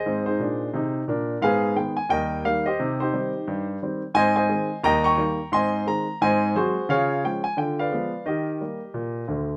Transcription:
X:1
M:4/4
L:1/8
Q:"Swing" 1/4=175
K:Cm
V:1 name="Grand piano"
[Ace] [EAc]4 z B2 | [A_cf]2 g a [Beg]2 f [G=ce]- | [Gce] [EGc]4 z3 | [K:Ab] [cea] [cea]3 [egb] [gbd']3 |
[eac']2 b2 [cea]2 [_GAc]2 | [Adf]2 g a g [=B=df]3 | [GBe]6- [GBe] z |]
V:2 name="Grand piano" clef=bass
[A,,C]2 [B,,D]2 [C,E]2 [B,,D]2 | [A,,_C]2 [E,A,C]2 [E,,G,]2 [E,G,B,]2 | [C,E]2 [E,G,C]2 G,,2 [E,G,C]2 | [K:Ab] [A,,C]2 [E,A,C]2 [E,,G,]2 [E,G,B,]2 |
[A,,C]2 [E,A,C]2 [A,,C]2 [_G,A,C]2 | [D,F]2 [F,A,D]2 [=D,F]2 [F,A,=B,]2 | E,2 [G,B,]2 B,,2 [=D,,=D,]2 |]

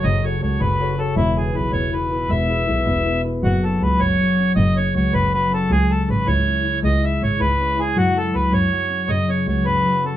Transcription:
X:1
M:6/8
L:1/8
Q:3/8=106
K:F#dor
V:1 name="Accordion"
d c c B2 A | E G B c B2 | e4- e z | F A B c3 |
d c c B B A | G A B c3 | d e c B2 G | F A B c3 |
d c c B2 A |]
V:2 name="Harp"
[C,FAc] [FAc] [FAc] C, [FAc] [FAc] | E, [EGB] [EGB] B,, [EGB] [EGB] | B,, [EGB] [EGB] B,, [EG] [EGB] | F, C F, C F, C |
C, C F, C F, C | C, G, C E C E | G, E C E C E | F, C F, C F, C |
C, C F, C F, C |]
V:3 name="Double bass" clef=bass
F,,, z C,, F,,,3 | E,,, z B,,, E,,,3 | E,,, z B,,, E,,,3 | F,,, z C,, F,,,3 |
F,,, z C,, F,,,3 | C,, z G,,, C,,3 | C,, z G,,, C,,3 | F,, z C,, F,,3 |
F,, z C,, F,,3 |]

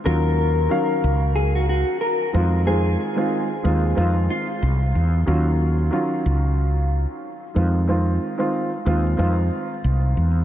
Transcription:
X:1
M:4/4
L:1/16
Q:"Swing 16ths" 1/4=92
K:Fphr
V:1 name="Clean electric guitar"
B8 A G G2 B2 z2 | A8 z2 F z4 z | z16 | z16 |]
V:2 name="Grand piano"
[E,G,DF]4 [E,G,Df]8- [E,G,Df] z [E,A,CF]2 | [E,A,CF]3 [E,A,CF]2 z [E,A,CF]2 [E,A,CF]6- [E,A,CF] z | [E,G,DF]4 [E,G,DF]8- [E,G,DF] z [E,A,CF]2 | [E,A,CF]3 [E,A,CF]2 z [E,A,CF]2 [E,A,CF]6- [E,A,CF] z |]
V:3 name="Fretless electric bass" clef=bass
E,,4 z2 D,,4- D,, z3 F,,2- | F,,2 z4 E,,2 F,,2 z2 C,,2 _F,,2 | E,,4 z2 D,,4- D,, z3 F,,2- | F,,2 z4 E,,2 F,,2 z2 C,,2 _F,,2 |]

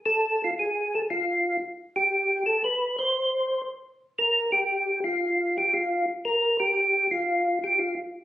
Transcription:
X:1
M:4/4
L:1/8
Q:"Swing" 1/4=117
K:Gm
V:1 name="Tonewheel organ"
A F _A =A F2 z G- | G A =B c3 z2 | B G2 F2 G F z | B G2 F2 G F z |]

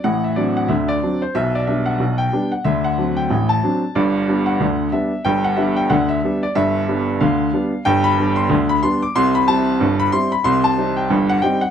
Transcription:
X:1
M:2/4
L:1/16
Q:"Swing 16ths" 1/4=92
K:G
V:1 name="Upright piano"
f e d f e d2 c | e d e f2 g2 f | e f2 g2 a3 | d3 f3 e2 |
g f e g f e2 d | e4 =f4 | g b2 c'2 b c' d' | c' b a3 b c' b |
c' a2 g2 f g f |]
V:2 name="Upright piano" clef=bass
[A,,,A,,]2 [F,CD]2 [D,,D,]2 [F,CD]2 | [B,,,B,,]2 [G,B,D]2 [B,,,B,,]2 [G,B,D]2 | [D,,D,]2 [F,CD]2 [A,,,A,,]2 [F,CD]2 | [G,,,G,,]2 [G,B,D]2 [D,,D,]2 [G,B,D]2 |
[G,,,G,,]2 [G,B,D]2 [D,,D,]2 [G,B,D]2 | [G,,,G,,]2 [G,B,D]2 [D,,D,]2 [G,B,D]2 | [G,,,G,,]2 [G,B,D]2 [D,,D,]2 [G,B,D]2 | [C,,C,]2 [G,CE]2 [G,,,G,,]2 [G,CE]2 |
[C,,C,]2 [G,C_E]2 [G,,,G,,]2 [G,CE]2 |]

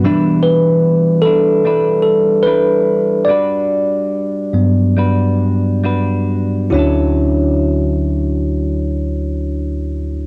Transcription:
X:1
M:4/4
L:1/8
Q:1/4=70
K:D
V:1 name="Tine electric piano"
z B2 A2 A B2 | d6 z2 | [DEFc]8 |]
V:2 name="Tine electric piano" clef=bass
[E,G,D] z6 z | z3 [G,,F,B,]4- [G,,F,B,] | D,,8 |]
V:3 name="Clean electric guitar"
[E,G,DEB]3 [DEB] [G,DEB]2 [G,DEB]2 | [G,DFB]4 [G,DFB]2 [G,DFB]2 | [D,F,CEA]8 |]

